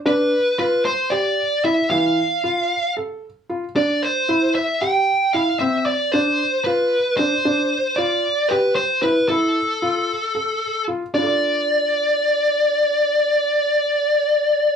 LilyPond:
<<
  \new Staff \with { instrumentName = "Lead electric guitar" } { \time 7/8 \key d \dorian \tempo 4 = 114 b'4 b'8 c''8 d''4 e''8 | f''2 r4. | d''8 c''4 e''8 g''4 f''8 | e''8 d''8 c''4 b'4 c''8~ |
c''4 d''4 b'8 c''8 b'8 | a'2. r8 | d''2.~ d''8~ | d''2.~ d''8 | }
  \new Staff \with { instrumentName = "Felt piano" } { \time 7/8 \key d \dorian d'4 f'4 g'4 e'8 | e4 f'4 a'4 f'8 | d'4 e'4 g'4 e'8 | c'4 d'4 f'4 d'8 |
d'4 f'4 g'4 e'8 | e'4 f'4 a'4 f'8 | <d' f' a' d''>2.~ <d' f' a' d''>8~ | <d' f' a' d''>2.~ <d' f' a' d''>8 | }
>>